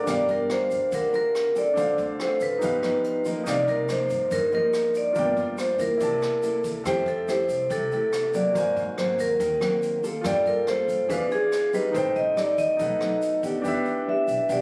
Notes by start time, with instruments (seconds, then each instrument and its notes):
Already playing: nylon-string guitar D4 F4 A#4
0.04 upright bass G1, nylon-string guitar G3, grand piano D4 G4, kick, cross-stick, closed hi-hat, shaker
0.08 grand piano A#4 F5, vibraphone D5
0.28 upright bass G1, vibraphone A#4, closed hi-hat, shaker
0.49 nylon-string guitar D4 F4 A#4, vibraphone C5, cross-stick, closed hi-hat
0.71 upright bass D2, closed hi-hat, shaker
0.92 upright bass D2, nylon-string guitar D3, vibraphone A#4, kick, closed hi-hat, shaker
1.12 nylon-string guitar D4 F4 A#4, vibraphone A#4, closed hi-hat, shaker
1.35 cross-stick, closed hi-hat
1.55 nylon-string guitar C4 F4 A4, vibraphone D5, closed hi-hat, shaker
1.74 upright bass D2, nylon-string guitar D3, grand piano D4 A4 C5, kick, closed hi-hat, shaker
1.80 grand piano F5
1.98 upright bass D2, closed hi-hat, shaker
2.19 nylon-string guitar C4 F4 A4, vibraphone C5, cross-stick, closed hi-hat
2.40 upright bass A1, vibraphone B4, closed hi-hat, shaker
2.59 upright bass G1, nylon-string guitar G2 F3 B3, grand piano D#4 G4, kick, closed hi-hat, shaker
2.63 nylon-string guitar D#4, grand piano B4 F5
2.83 nylon-string guitar F3 B3 D#4, cross-stick, closed hi-hat, shaker
3.04 closed hi-hat
3.25 nylon-string guitar F3 A#3 D#4, closed hi-hat, shaker
3.44 upright bass C2, nylon-string guitar C3, grand piano D#4 A#4 D5, kick, cross-stick, closed hi-hat, shaker
3.48 vibraphone D5, grand piano F5
3.67 upright bass C2, vibraphone A#4, closed hi-hat, shaker
3.89 nylon-string guitar F3 A#3 D#4, vibraphone C5, cross-stick, closed hi-hat, shaker
4.10 upright bass G2, closed hi-hat, shaker
4.31 upright bass G2, nylon-string guitar G2, vibraphone A#4, kick, closed hi-hat, shaker
4.52 nylon-string guitar F3 A#3 D#4, vibraphone A#4, closed hi-hat, shaker
4.73 cross-stick, closed hi-hat, shaker
4.94 vibraphone D5, closed hi-hat, shaker
5.13 upright bass G1, nylon-string guitar G2 F3 A#3 D4, grand piano F4 A#4, kick, closed hi-hat, shaker
5.17 grand piano D5 G5
5.37 upright bass G1, closed hi-hat, shaker
5.58 vibraphone C5, cross-stick, closed hi-hat, shaker
5.79 upright bass G2, nylon-string guitar A#3 E4, vibraphone A#4, kick, closed hi-hat, shaker
5.97 upright bass C2, nylon-string guitar C3, grand piano E4 D5, kick, closed hi-hat, shaker
6.03 grand piano A5
6.21 cross-stick, closed hi-hat, shaker
6.43 nylon-string guitar A#3 E4 A4, closed hi-hat, shaker
6.64 kick, closed hi-hat, shaker
6.84 upright bass F2, nylon-string guitar F3 A3 E4 G4, grand piano A4 E5, vibraphone C5, kick, cross-stick, closed hi-hat, shaker
6.88 grand piano G5
7.06 upright bass F2, vibraphone A4, closed hi-hat, shaker
7.28 nylon-string guitar A3 E4 G4, vibraphone C5, cross-stick, closed hi-hat, shaker
7.49 upright bass C2, closed hi-hat, shaker
7.70 upright bass C2, nylon-string guitar C3, vibraphone A4, kick, closed hi-hat, shaker
7.91 nylon-string guitar A3 E4 G4, vibraphone A4, closed hi-hat, shaker
8.13 cross-stick, closed hi-hat, shaker
8.34 nylon-string guitar F#3 A#3 C4, vibraphone D5, closed hi-hat, shaker
8.52 upright bass G#2, nylon-string guitar G#2, grand piano F#4 A#4, kick, closed hi-hat, shaker
8.56 grand piano C5 G#5
8.76 upright bass G#2, closed hi-hat, shaker
8.97 nylon-string guitar F#3 A#3 C4, vibraphone C5, cross-stick, closed hi-hat
9.18 upright bass D#2, vibraphone A#4, closed hi-hat, shaker
9.40 upright bass D#2, nylon-string guitar D#3, kick, closed hi-hat, shaker
9.60 nylon-string guitar F#3 A#3 C4, cross-stick, closed hi-hat, shaker
9.83 closed hi-hat, shaker
10.03 nylon-string guitar A#3 F4 A4, closed hi-hat, shaker
10.21 upright bass G2, nylon-string guitar G3, grand piano F4 A4, kick, cross-stick, closed hi-hat, shaker
10.26 vibraphone D5, grand piano G5
10.45 upright bass G2, vibraphone A#4, closed hi-hat, shaker
10.67 nylon-string guitar A#3 F4 A4, vibraphone C5, cross-stick, closed hi-hat
10.88 upright bass G2, closed hi-hat, shaker
11.08 upright bass E2, nylon-string guitar E3 D4 F4 G#4, grand piano G#4 D5, vibraphone B4, kick, closed hi-hat, shaker
11.12 grand piano F5
11.30 nylon-string guitar D4 F4 G#4, vibraphone G#4, closed hi-hat, shaker
11.52 cross-stick, closed hi-hat, shaker
11.73 nylon-string guitar G3 C4 D#4, vibraphone B4, closed hi-hat, shaker
11.92 upright bass A1, nylon-string guitar A2, grand piano D#4 A4 C5, kick, closed hi-hat, shaker
11.96 vibraphone C5, grand piano G5
12.16 upright bass A1, vibraphone D#5, closed hi-hat, shaker
12.36 nylon-string guitar G3 C4 D#4, vibraphone D5, cross-stick, closed hi-hat, shaker
12.58 upright bass D#2, vibraphone D#5, kick, closed hi-hat, shaker
12.77 upright bass B1, nylon-string guitar B2 F#3 A3 D#4, grand piano D#4 A4, kick, closed hi-hat, shaker
12.81 grand piano B4 F#5
13.01 nylon-string guitar F#3 A3 D#4, cross-stick, closed hi-hat, shaker
13.22 closed hi-hat, shaker
13.43 nylon-string guitar B3 D4 G4, kick, closed hi-hat, shaker
13.62 upright bass E2, nylon-string guitar E3, grand piano D4 G4 B4, shaker
13.68 grand piano E5
13.85 shaker
14.07 nylon-string guitar B3 D4 G4, vibraphone E5
14.28 upright bass B1, shaker
14.49 upright bass B1, nylon-string guitar B2 B3 D4 G4, vibraphone D5, shaker